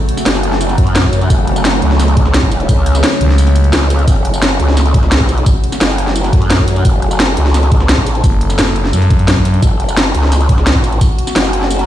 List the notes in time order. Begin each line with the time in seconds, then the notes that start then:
Already playing: C#3 F#3 A3 F#4
0.09 closed hi-hat
0.17 snare, tambourine
0.26 F#1, snare, closed hi-hat, tambourine
0.35 tambourine
0.43 closed hi-hat
0.52 snare
0.61 closed hi-hat, tambourine
0.69 snare, closed hi-hat
0.78 F#2, kick, closed hi-hat
0.87 closed hi-hat
0.95 snare, closed hi-hat, tambourine
1.04 kick
1.13 closed hi-hat, tambourine
1.21 closed hi-hat
1.30 F#1 C#4, kick, closed hi-hat, tambourine
1.47 closed hi-hat
1.56 tambourine
1.65 snare, closed hi-hat, tambourine
1.82 C#2, closed hi-hat
1.91 snare
1.99 snare, closed hi-hat, tambourine
2.08 closed hi-hat
2.17 kick, closed hi-hat
2.26 snare
2.34 snare, closed hi-hat, tambourine
2.43 kick
2.52 closed hi-hat, tambourine
2.60 closed hi-hat
2.69 C#2, kick, closed hi-hat, tambourine
2.86 closed hi-hat, tambourine
2.95 snare, tambourine
3.04 snare, closed hi-hat, tambourine
3.12 tambourine
3.21 C#2, closed hi-hat
3.30 snare
3.38 closed hi-hat, tambourine
3.47 snare, closed hi-hat
3.56 closed hi-hat, tambourine
3.64 closed hi-hat
3.73 C#2, snare, closed hi-hat, tambourine
3.90 closed hi-hat, tambourine
3.99 closed hi-hat
4.08 F#1 F#4, kick, closed hi-hat, tambourine
4.25 closed hi-hat
4.34 tambourine
4.42 snare, closed hi-hat, tambourine
4.60 C#2, closed hi-hat
4.68 snare
4.77 snare, closed hi-hat, tambourine
4.86 closed hi-hat
4.94 kick, closed hi-hat
5.03 snare
5.12 snare, closed hi-hat, tambourine
5.20 C2, kick
5.29 closed hi-hat, tambourine
5.38 closed hi-hat
5.46 kick, closed hi-hat, tambourine
5.64 closed hi-hat
5.72 snare, tambourine
5.81 F#1, snare, closed hi-hat, tambourine
5.90 tambourine
5.98 closed hi-hat
6.07 snare
6.16 closed hi-hat, tambourine
6.24 snare, closed hi-hat
6.33 F#2, kick, closed hi-hat
6.42 closed hi-hat
6.50 snare, closed hi-hat, tambourine
6.59 kick
6.68 closed hi-hat, tambourine
6.76 closed hi-hat
6.85 F#1 A4, kick, closed hi-hat, tambourine
7.02 closed hi-hat
7.11 tambourine
7.20 snare, closed hi-hat, tambourine
7.37 C#2, closed hi-hat
7.46 snare
7.54 snare, closed hi-hat, tambourine
7.63 closed hi-hat
7.72 kick, closed hi-hat
7.80 snare
7.89 snare, closed hi-hat, tambourine
7.98 kick
8.06 closed hi-hat, tambourine
8.15 closed hi-hat
8.24 F#1, kick, closed hi-hat, tambourine
8.41 closed hi-hat
8.50 snare, tambourine
8.58 F#1, snare, closed hi-hat, tambourine
8.67 tambourine
8.76 closed hi-hat
8.85 snare
8.93 F#2, closed hi-hat, tambourine
9.02 snare, closed hi-hat
9.10 kick, closed hi-hat
9.19 closed hi-hat
9.28 snare, closed hi-hat, tambourine
9.36 kick
9.45 closed hi-hat, tambourine
9.54 closed hi-hat
9.62 F#1 F#4, kick, closed hi-hat, tambourine
9.80 closed hi-hat
9.89 tambourine
9.97 snare, closed hi-hat, tambourine
10.15 C#2, closed hi-hat
10.23 snare
10.32 snare, closed hi-hat, tambourine
10.41 closed hi-hat
10.49 kick, closed hi-hat
10.58 snare
10.67 snare, closed hi-hat, tambourine
10.75 kick
10.84 closed hi-hat, tambourine
10.92 closed hi-hat
11.01 kick, closed hi-hat, tambourine
11.19 closed hi-hat
11.27 snare, tambourine
11.36 F#1, snare, closed hi-hat, tambourine
11.45 tambourine
11.53 closed hi-hat
11.62 snare
11.71 closed hi-hat, tambourine
11.79 snare, closed hi-hat